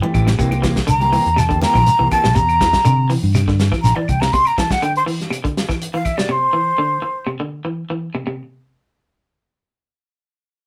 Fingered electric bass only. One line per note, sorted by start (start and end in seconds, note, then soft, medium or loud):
0.15 0.34 A1 medium
0.39 0.78 C2 loud
0.88 1.17 C2 medium
1.26 1.64 E2 medium
1.75 1.84 A#1 loud
2.00 2.09 C2 medium
2.25 2.36 A#1 medium
2.36 2.75 E2 loud
2.86 3.15 C3 loud
3.23 3.71 G2 loud
3.84 3.94 A#1 loud
4.09 4.28 C2 medium